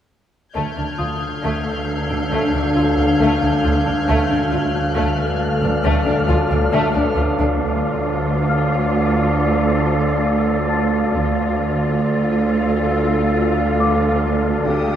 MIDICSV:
0, 0, Header, 1, 8, 480
1, 0, Start_track
1, 0, Tempo, 882353
1, 301, Time_signature, 4, 2, 24, 8
1, 8139, End_track
2, 0, Start_track
2, 0, Title_t, "Violin section"
2, 0, Program_c, 0, 48
2, 303, Note_on_c, 0, 89, 17
2, 305, Note_on_c, 0, 92, 18
2, 306, Note_on_c, 0, 91, 16
2, 2629, Note_off_c, 0, 91, 0
2, 2629, Note_on_c, 0, 90, 16
2, 2921, Note_off_c, 0, 92, 0
2, 3402, Note_off_c, 0, 90, 0
2, 3880, Note_off_c, 0, 89, 0
2, 7985, Note_on_c, 0, 87, 31
2, 8139, Note_off_c, 0, 87, 0
2, 8139, End_track
3, 0, Start_track
3, 0, Title_t, "Celesta"
3, 0, Program_c, 1, 8
3, 403, Control_c, 1, 64, 127
3, 535, Note_on_c, 1, 87, 19
3, 1956, Note_off_c, 1, 87, 0
3, 4150, Control_c, 1, 64, 0
3, 4244, Control_c, 1, 64, 127
3, 4618, Note_on_c, 1, 77, 22
3, 4621, Note_on_c, 1, 89, 27
3, 5818, Note_on_c, 1, 93, 23
3, 5820, Note_on_c, 1, 81, 22
3, 6038, Note_off_c, 1, 77, 0
3, 6039, Note_off_c, 1, 89, 0
3, 7238, Note_off_c, 1, 93, 0
3, 7239, Note_off_c, 1, 81, 0
3, 7502, Note_on_c, 1, 77, 24
3, 7509, Note_on_c, 1, 86, 32
3, 7990, Control_c, 1, 64, 0
3, 8085, Control_c, 1, 64, 127
3, 8139, Note_off_c, 1, 77, 0
3, 8139, Note_off_c, 1, 86, 0
3, 8139, End_track
4, 0, Start_track
4, 0, Title_t, "Synth texture"
4, 0, Program_c, 2, 99
4, 310, Note_on_c, 2, 62, 39
4, 310, Note_on_c, 2, 77, 38
4, 311, Note_on_c, 2, 69, 39
4, 2204, Note_off_c, 2, 62, 0
4, 2204, Note_off_c, 2, 69, 0
4, 2204, Note_off_c, 2, 77, 0
4, 2220, Note_on_c, 2, 74, 43
4, 2221, Note_on_c, 2, 77, 42
4, 2222, Note_on_c, 2, 69, 39
4, 4119, Note_off_c, 2, 74, 0
4, 4119, Note_off_c, 2, 77, 0
4, 4120, Note_off_c, 2, 69, 0
4, 4140, Note_on_c, 2, 69, 43
4, 4141, Note_on_c, 2, 77, 42
4, 4142, Note_on_c, 2, 74, 42
4, 6039, Note_off_c, 2, 69, 0
4, 6039, Note_off_c, 2, 77, 0
4, 6040, Note_off_c, 2, 74, 0
4, 6061, Note_on_c, 2, 69, 42
4, 6066, Note_on_c, 2, 77, 44
4, 6067, Note_on_c, 2, 74, 41
4, 7959, Note_off_c, 2, 69, 0
4, 7962, Note_off_c, 2, 74, 0
4, 7962, Note_off_c, 2, 77, 0
4, 8139, End_track
5, 0, Start_track
5, 0, Title_t, "Violin section"
5, 0, Program_c, 3, 48
5, 297, Note_on_c, 3, 57, 25
5, 410, Note_off_c, 3, 57, 0
5, 421, Note_on_c, 3, 62, 18
5, 465, Note_off_c, 3, 62, 0
5, 537, Note_on_c, 3, 65, 19
5, 580, Note_off_c, 3, 65, 0
5, 780, Note_on_c, 3, 57, 27
5, 892, Note_off_c, 3, 57, 0
5, 1141, Note_on_c, 3, 62, 21
5, 1185, Note_off_c, 3, 62, 0
5, 1260, Note_on_c, 3, 57, 28
5, 1372, Note_off_c, 3, 57, 0
5, 1384, Note_on_c, 3, 62, 22
5, 1427, Note_off_c, 3, 62, 0
5, 1500, Note_on_c, 3, 65, 24
5, 1544, Note_off_c, 3, 65, 0
5, 1633, Note_on_c, 3, 62, 24
5, 1677, Note_off_c, 3, 62, 0
5, 1744, Note_on_c, 3, 57, 34
5, 1854, Note_off_c, 3, 57, 0
5, 1864, Note_on_c, 3, 62, 26
5, 1907, Note_off_c, 3, 62, 0
5, 1982, Note_on_c, 3, 65, 26
5, 2025, Note_off_c, 3, 65, 0
5, 2105, Note_on_c, 3, 62, 34
5, 2149, Note_off_c, 3, 62, 0
5, 2221, Note_on_c, 3, 57, 40
5, 2332, Note_off_c, 3, 57, 0
5, 2342, Note_on_c, 3, 62, 30
5, 2385, Note_off_c, 3, 62, 0
5, 2461, Note_on_c, 3, 65, 26
5, 2504, Note_off_c, 3, 65, 0
5, 2696, Note_on_c, 3, 57, 41
5, 2810, Note_off_c, 3, 57, 0
5, 3063, Note_on_c, 3, 62, 33
5, 3107, Note_off_c, 3, 62, 0
5, 3177, Note_on_c, 3, 57, 49
5, 3290, Note_off_c, 3, 57, 0
5, 3296, Note_on_c, 3, 62, 44
5, 3339, Note_off_c, 3, 62, 0
5, 3420, Note_on_c, 3, 65, 42
5, 3463, Note_off_c, 3, 65, 0
5, 3541, Note_on_c, 3, 62, 38
5, 3585, Note_off_c, 3, 62, 0
5, 3658, Note_on_c, 3, 57, 53
5, 3771, Note_off_c, 3, 57, 0
5, 3777, Note_on_c, 3, 62, 33
5, 3820, Note_off_c, 3, 62, 0
5, 3901, Note_on_c, 3, 65, 34
5, 3944, Note_off_c, 3, 65, 0
5, 4024, Note_on_c, 3, 62, 35
5, 4067, Note_off_c, 3, 62, 0
5, 4139, Note_on_c, 3, 65, 30
5, 6038, Note_off_c, 3, 65, 0
5, 6057, Note_on_c, 3, 65, 35
5, 7957, Note_off_c, 3, 65, 0
5, 7979, Note_on_c, 3, 67, 39
5, 8139, Note_off_c, 3, 67, 0
5, 8139, End_track
6, 0, Start_track
6, 0, Title_t, "Cello section"
6, 0, Program_c, 4, 48
6, 4139, Note_on_c, 4, 38, 36
6, 6038, Note_off_c, 4, 38, 0
6, 6057, Note_on_c, 4, 38, 39
6, 7957, Note_off_c, 4, 38, 0
6, 7978, Note_on_c, 4, 38, 41
6, 8139, Note_off_c, 4, 38, 0
6, 8139, End_track
7, 0, Start_track
7, 0, Title_t, "Double bass section"
7, 0, Program_c, 5, 48
7, 306, Note_on_c, 5, 38, 25
7, 350, Note_off_c, 5, 38, 0
7, 426, Note_on_c, 5, 38, 20
7, 470, Note_off_c, 5, 38, 0
7, 543, Note_on_c, 5, 38, 19
7, 586, Note_off_c, 5, 38, 0
7, 782, Note_on_c, 5, 38, 28
7, 826, Note_off_c, 5, 38, 0
7, 1144, Note_on_c, 5, 38, 20
7, 1187, Note_off_c, 5, 38, 0
7, 1261, Note_on_c, 5, 38, 27
7, 1305, Note_off_c, 5, 38, 0
7, 1382, Note_on_c, 5, 38, 22
7, 1426, Note_off_c, 5, 38, 0
7, 1502, Note_on_c, 5, 38, 23
7, 1546, Note_off_c, 5, 38, 0
7, 1618, Note_on_c, 5, 38, 21
7, 1662, Note_off_c, 5, 38, 0
7, 1742, Note_on_c, 5, 38, 34
7, 1786, Note_off_c, 5, 38, 0
7, 1865, Note_on_c, 5, 38, 24
7, 1908, Note_off_c, 5, 38, 0
7, 1990, Note_on_c, 5, 38, 23
7, 2033, Note_off_c, 5, 38, 0
7, 2110, Note_on_c, 5, 38, 25
7, 2153, Note_off_c, 5, 38, 0
7, 2229, Note_on_c, 5, 38, 38
7, 2273, Note_off_c, 5, 38, 0
7, 2349, Note_on_c, 5, 38, 29
7, 2393, Note_off_c, 5, 38, 0
7, 2468, Note_on_c, 5, 38, 30
7, 2512, Note_off_c, 5, 38, 0
7, 2702, Note_on_c, 5, 38, 47
7, 2745, Note_off_c, 5, 38, 0
7, 3059, Note_on_c, 5, 38, 39
7, 3103, Note_off_c, 5, 38, 0
7, 3184, Note_on_c, 5, 38, 45
7, 3227, Note_off_c, 5, 38, 0
7, 3301, Note_on_c, 5, 38, 41
7, 3345, Note_off_c, 5, 38, 0
7, 3426, Note_on_c, 5, 38, 39
7, 3469, Note_off_c, 5, 38, 0
7, 3545, Note_on_c, 5, 38, 36
7, 3589, Note_off_c, 5, 38, 0
7, 3663, Note_on_c, 5, 38, 51
7, 3707, Note_off_c, 5, 38, 0
7, 3784, Note_on_c, 5, 38, 38
7, 3827, Note_off_c, 5, 38, 0
7, 3901, Note_on_c, 5, 38, 28
7, 3945, Note_off_c, 5, 38, 0
7, 4022, Note_on_c, 5, 38, 29
7, 4065, Note_off_c, 5, 38, 0
7, 4139, Note_on_c, 5, 38, 30
7, 4598, Note_off_c, 5, 38, 0
7, 6066, Note_on_c, 5, 38, 34
7, 6522, Note_off_c, 5, 38, 0
7, 7984, Note_on_c, 5, 38, 40
7, 8139, Note_off_c, 5, 38, 0
7, 8139, End_track
8, 0, Start_track
8, 0, Title_t, "Synth drone"
8, 0, Program_c, 6, 95
8, 308, Note_on_c, 6, 38, 45
8, 2203, Note_off_c, 6, 38, 0
8, 2219, Note_on_c, 6, 38, 52
8, 4118, Note_off_c, 6, 38, 0
8, 4143, Note_on_c, 6, 38, 51
8, 6040, Note_off_c, 6, 38, 0
8, 6062, Note_on_c, 6, 38, 50
8, 7960, Note_off_c, 6, 38, 0
8, 7979, Note_on_c, 6, 38, 55
8, 8139, Note_off_c, 6, 38, 0
8, 8139, End_track
0, 0, End_of_file